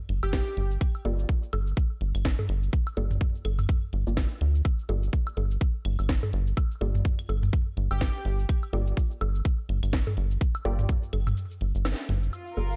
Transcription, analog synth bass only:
0, 0, Header, 1, 2, 480
1, 0, Start_track
1, 0, Key_signature, -2, "minor"
1, 0, Tempo, 480000
1, 811, Time_signature, 4, 2, 24, 8
1, 12763, End_track
2, 0, Start_track
2, 0, Title_t, "Analog synth bass"
2, 0, Program_c, 0, 38
2, 91, Note_on_c, 0, 31, 82
2, 206, Note_off_c, 0, 31, 0
2, 229, Note_on_c, 0, 31, 82
2, 422, Note_off_c, 0, 31, 0
2, 571, Note_on_c, 0, 31, 96
2, 776, Note_off_c, 0, 31, 0
2, 1050, Note_on_c, 0, 31, 95
2, 1256, Note_off_c, 0, 31, 0
2, 1530, Note_on_c, 0, 31, 84
2, 1736, Note_off_c, 0, 31, 0
2, 2010, Note_on_c, 0, 31, 80
2, 2125, Note_off_c, 0, 31, 0
2, 2148, Note_on_c, 0, 31, 84
2, 2341, Note_off_c, 0, 31, 0
2, 2490, Note_on_c, 0, 31, 99
2, 2696, Note_off_c, 0, 31, 0
2, 2971, Note_on_c, 0, 31, 97
2, 3176, Note_off_c, 0, 31, 0
2, 3450, Note_on_c, 0, 31, 83
2, 3656, Note_off_c, 0, 31, 0
2, 3931, Note_on_c, 0, 31, 85
2, 4046, Note_off_c, 0, 31, 0
2, 4070, Note_on_c, 0, 31, 90
2, 4262, Note_off_c, 0, 31, 0
2, 4412, Note_on_c, 0, 38, 84
2, 4617, Note_off_c, 0, 38, 0
2, 4890, Note_on_c, 0, 31, 98
2, 5096, Note_off_c, 0, 31, 0
2, 5370, Note_on_c, 0, 31, 85
2, 5576, Note_off_c, 0, 31, 0
2, 5851, Note_on_c, 0, 31, 81
2, 5966, Note_off_c, 0, 31, 0
2, 5990, Note_on_c, 0, 31, 84
2, 6182, Note_off_c, 0, 31, 0
2, 6331, Note_on_c, 0, 31, 98
2, 6536, Note_off_c, 0, 31, 0
2, 6811, Note_on_c, 0, 31, 96
2, 7016, Note_off_c, 0, 31, 0
2, 7290, Note_on_c, 0, 31, 83
2, 7496, Note_off_c, 0, 31, 0
2, 7770, Note_on_c, 0, 31, 81
2, 7885, Note_off_c, 0, 31, 0
2, 7908, Note_on_c, 0, 31, 85
2, 8102, Note_off_c, 0, 31, 0
2, 8251, Note_on_c, 0, 31, 98
2, 8456, Note_off_c, 0, 31, 0
2, 8730, Note_on_c, 0, 31, 96
2, 8936, Note_off_c, 0, 31, 0
2, 9211, Note_on_c, 0, 31, 83
2, 9416, Note_off_c, 0, 31, 0
2, 9690, Note_on_c, 0, 31, 79
2, 9806, Note_off_c, 0, 31, 0
2, 9829, Note_on_c, 0, 31, 85
2, 10022, Note_off_c, 0, 31, 0
2, 10171, Note_on_c, 0, 31, 97
2, 10376, Note_off_c, 0, 31, 0
2, 10650, Note_on_c, 0, 31, 97
2, 10856, Note_off_c, 0, 31, 0
2, 11131, Note_on_c, 0, 31, 82
2, 11336, Note_off_c, 0, 31, 0
2, 11611, Note_on_c, 0, 31, 80
2, 11726, Note_off_c, 0, 31, 0
2, 11749, Note_on_c, 0, 31, 85
2, 11942, Note_off_c, 0, 31, 0
2, 12090, Note_on_c, 0, 31, 99
2, 12296, Note_off_c, 0, 31, 0
2, 12570, Note_on_c, 0, 31, 94
2, 12763, Note_off_c, 0, 31, 0
2, 12763, End_track
0, 0, End_of_file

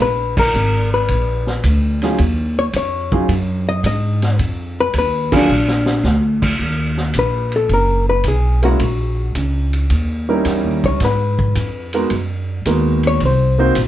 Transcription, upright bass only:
0, 0, Header, 1, 2, 480
1, 0, Start_track
1, 0, Key_signature, -6, "minor"
1, 0, Tempo, 550964
1, 1912, Time_signature, 4, 2, 24, 8
1, 12089, End_track
2, 0, Start_track
2, 0, Title_t, "Upright bass"
2, 0, Program_c, 0, 32
2, 0, Note_on_c, 0, 34, 83
2, 458, Note_off_c, 0, 34, 0
2, 469, Note_on_c, 0, 32, 90
2, 936, Note_off_c, 0, 32, 0
2, 950, Note_on_c, 0, 34, 84
2, 1417, Note_off_c, 0, 34, 0
2, 1424, Note_on_c, 0, 38, 95
2, 1893, Note_off_c, 0, 38, 0
2, 1910, Note_on_c, 0, 39, 93
2, 2376, Note_off_c, 0, 39, 0
2, 2383, Note_on_c, 0, 41, 93
2, 2852, Note_off_c, 0, 41, 0
2, 2860, Note_on_c, 0, 42, 96
2, 3331, Note_off_c, 0, 42, 0
2, 3339, Note_on_c, 0, 44, 92
2, 3810, Note_off_c, 0, 44, 0
2, 3823, Note_on_c, 0, 41, 92
2, 4292, Note_off_c, 0, 41, 0
2, 4302, Note_on_c, 0, 39, 87
2, 4771, Note_off_c, 0, 39, 0
2, 4786, Note_on_c, 0, 34, 96
2, 5252, Note_off_c, 0, 34, 0
2, 5257, Note_on_c, 0, 38, 93
2, 5729, Note_off_c, 0, 38, 0
2, 5744, Note_on_c, 0, 39, 88
2, 6212, Note_off_c, 0, 39, 0
2, 6224, Note_on_c, 0, 34, 85
2, 6693, Note_off_c, 0, 34, 0
2, 6702, Note_on_c, 0, 30, 86
2, 7171, Note_off_c, 0, 30, 0
2, 7182, Note_on_c, 0, 35, 87
2, 7651, Note_off_c, 0, 35, 0
2, 7662, Note_on_c, 0, 34, 85
2, 8132, Note_off_c, 0, 34, 0
2, 8146, Note_on_c, 0, 37, 85
2, 8614, Note_off_c, 0, 37, 0
2, 8625, Note_on_c, 0, 39, 85
2, 9093, Note_off_c, 0, 39, 0
2, 9105, Note_on_c, 0, 40, 90
2, 9263, Note_off_c, 0, 40, 0
2, 9263, Note_on_c, 0, 39, 58
2, 9427, Note_off_c, 0, 39, 0
2, 9438, Note_on_c, 0, 37, 69
2, 9580, Note_off_c, 0, 37, 0
2, 9585, Note_on_c, 0, 44, 87
2, 10053, Note_off_c, 0, 44, 0
2, 10066, Note_on_c, 0, 41, 83
2, 10534, Note_off_c, 0, 41, 0
2, 10544, Note_on_c, 0, 42, 85
2, 11013, Note_off_c, 0, 42, 0
2, 11027, Note_on_c, 0, 39, 98
2, 11495, Note_off_c, 0, 39, 0
2, 11505, Note_on_c, 0, 36, 84
2, 11974, Note_off_c, 0, 36, 0
2, 11983, Note_on_c, 0, 34, 90
2, 12089, Note_off_c, 0, 34, 0
2, 12089, End_track
0, 0, End_of_file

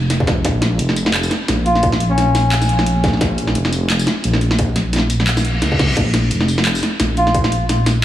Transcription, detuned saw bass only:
0, 0, Header, 1, 2, 480
1, 0, Start_track
1, 0, Key_signature, -5, "minor"
1, 0, Tempo, 344828
1, 626, Time_signature, 4, 2, 24, 8
1, 11201, End_track
2, 0, Start_track
2, 0, Title_t, "Detuned saw bass"
2, 0, Program_c, 0, 39
2, 0, Note_on_c, 0, 29, 97
2, 611, Note_off_c, 0, 29, 0
2, 628, Note_on_c, 0, 34, 104
2, 1090, Note_off_c, 0, 34, 0
2, 1108, Note_on_c, 0, 29, 97
2, 1810, Note_off_c, 0, 29, 0
2, 2068, Note_on_c, 0, 34, 101
2, 3010, Note_off_c, 0, 34, 0
2, 3030, Note_on_c, 0, 34, 97
2, 4451, Note_off_c, 0, 34, 0
2, 4467, Note_on_c, 0, 34, 98
2, 4930, Note_off_c, 0, 34, 0
2, 4946, Note_on_c, 0, 29, 103
2, 5649, Note_off_c, 0, 29, 0
2, 5913, Note_on_c, 0, 34, 99
2, 6853, Note_off_c, 0, 34, 0
2, 6870, Note_on_c, 0, 34, 98
2, 7811, Note_off_c, 0, 34, 0
2, 7827, Note_on_c, 0, 37, 96
2, 8290, Note_off_c, 0, 37, 0
2, 8306, Note_on_c, 0, 34, 98
2, 8769, Note_off_c, 0, 34, 0
2, 8782, Note_on_c, 0, 29, 97
2, 9487, Note_off_c, 0, 29, 0
2, 9745, Note_on_c, 0, 34, 103
2, 10688, Note_off_c, 0, 34, 0
2, 10704, Note_on_c, 0, 34, 101
2, 11201, Note_off_c, 0, 34, 0
2, 11201, End_track
0, 0, End_of_file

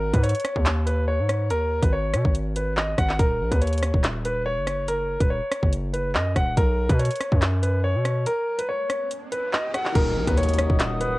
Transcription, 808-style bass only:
0, 0, Header, 1, 2, 480
1, 0, Start_track
1, 0, Key_signature, -6, "minor"
1, 0, Tempo, 422535
1, 1706, Time_signature, 4, 2, 24, 8
1, 12708, End_track
2, 0, Start_track
2, 0, Title_t, "808-style bass"
2, 0, Program_c, 0, 38
2, 0, Note_on_c, 0, 32, 107
2, 138, Note_off_c, 0, 32, 0
2, 152, Note_on_c, 0, 44, 104
2, 383, Note_off_c, 0, 44, 0
2, 634, Note_on_c, 0, 39, 109
2, 1353, Note_on_c, 0, 44, 100
2, 1370, Note_off_c, 0, 39, 0
2, 1706, Note_on_c, 0, 39, 93
2, 1723, Note_off_c, 0, 44, 0
2, 2055, Note_off_c, 0, 39, 0
2, 2073, Note_on_c, 0, 32, 107
2, 2426, Note_on_c, 0, 47, 99
2, 2443, Note_off_c, 0, 32, 0
2, 2547, Note_off_c, 0, 47, 0
2, 2554, Note_on_c, 0, 32, 104
2, 3353, Note_off_c, 0, 32, 0
2, 3385, Note_on_c, 0, 32, 104
2, 3616, Note_off_c, 0, 32, 0
2, 3626, Note_on_c, 0, 27, 105
2, 3866, Note_on_c, 0, 34, 105
2, 3883, Note_off_c, 0, 27, 0
2, 3987, Note_off_c, 0, 34, 0
2, 3993, Note_on_c, 0, 39, 100
2, 4454, Note_off_c, 0, 39, 0
2, 4474, Note_on_c, 0, 27, 109
2, 5193, Note_on_c, 0, 30, 103
2, 5210, Note_off_c, 0, 27, 0
2, 5877, Note_off_c, 0, 30, 0
2, 5912, Note_on_c, 0, 27, 102
2, 6143, Note_off_c, 0, 27, 0
2, 6394, Note_on_c, 0, 30, 112
2, 6986, Note_on_c, 0, 42, 95
2, 7003, Note_off_c, 0, 30, 0
2, 7214, Note_off_c, 0, 42, 0
2, 7225, Note_on_c, 0, 27, 106
2, 7456, Note_off_c, 0, 27, 0
2, 7466, Note_on_c, 0, 35, 110
2, 7818, Note_off_c, 0, 35, 0
2, 7832, Note_on_c, 0, 47, 101
2, 8063, Note_off_c, 0, 47, 0
2, 8314, Note_on_c, 0, 42, 110
2, 9033, Note_on_c, 0, 47, 102
2, 9050, Note_off_c, 0, 42, 0
2, 9386, Note_off_c, 0, 47, 0
2, 11306, Note_on_c, 0, 27, 108
2, 11546, Note_on_c, 0, 34, 101
2, 11563, Note_off_c, 0, 27, 0
2, 11667, Note_off_c, 0, 34, 0
2, 11672, Note_on_c, 0, 39, 105
2, 12134, Note_off_c, 0, 39, 0
2, 12154, Note_on_c, 0, 27, 108
2, 12708, Note_off_c, 0, 27, 0
2, 12708, End_track
0, 0, End_of_file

